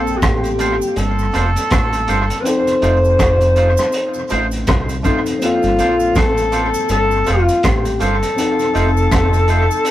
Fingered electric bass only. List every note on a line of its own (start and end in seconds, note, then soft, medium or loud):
0.00 0.19 A#1 medium
0.23 0.78 A1 medium
0.97 1.31 G1 medium
1.34 1.54 F1 medium
1.72 2.06 A1 medium
2.09 2.29 G1 medium
2.83 3.17 F1 loud
3.19 3.74 F1 loud
4.32 4.65 A1 medium
4.68 5.02 C2 medium
5.64 5.78 G1 medium
5.79 6.13 A#1 medium
6.16 6.71 A1 medium
6.89 7.24 G1 medium
7.27 7.47 F1 medium
7.64 7.98 A1 medium
8.01 8.21 G1 medium
8.75 9.09 F1 medium
9.12 9.66 F1 medium